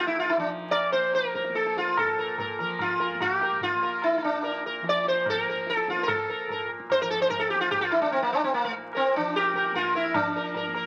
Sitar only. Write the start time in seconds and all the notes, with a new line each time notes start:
0.07 E4
0.19 F4
0.29 E4
0.39 D4
0.71 D5
0.92 C5
1.15 A#4
1.35 A#4
1.55 A4
1.78 F4
1.99 A4
2.19 A#4
2.40 A#4
2.60 A#4
2.81 F4
3.00 A#4
3.21 G4
3.43 A#4
3.63 F4
3.83 A#4
4.04 E4
4.18 E4
4.24 D4
4.44 A#4
4.66 A#4
4.89 D5
5.08 C5
5.30 A4
5.50 A#4
5.70 A4
5.90 F4
6.03 A#4
6.08 A4
6.30 A#4
6.51 A#4
6.92 C5
7.02 A#4
7.10 A4
7.22 C5
7.30 A#4
7.39 A4
7.50 G4
7.61 F4
7.71 G4
7.81 F4
7.92 E4
8.02 D4
8.12 C4
8.22 A#3
8.33 D4
8.44 C4
8.54 A#3
8.64 A3
8.95 C4 A#4
9.16 D4
9.36 G4 A#4
9.55 A#4
9.75 F4 A#4
9.95 E4 A#4
10.15 D4
10.36 A#4
10.56 A#4
10.75 A#4